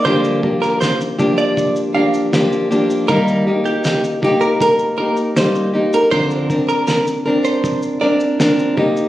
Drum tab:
SH |xx-xxxxxxx-xxxxx|xx-xxx-xxx-xxx-x|xxxxxx-xxx-xxx-x|
SD |---oo-------o---|----o-------o---|----o-------o---|
BD |o-o---o-o-------|o-----o-o-------|o-o-----o-----o-|